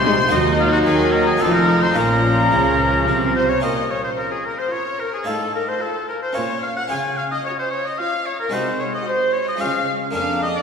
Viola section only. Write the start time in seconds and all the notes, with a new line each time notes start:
0.06 G#3
0.32 F#3
1.42 F3
1.97 F3
4.18 F4
4.72 F4
5.82 F4
6.36 F4
7.45 F4
7.99 F4
9.08 F#4
9.61 F4
10.15 D4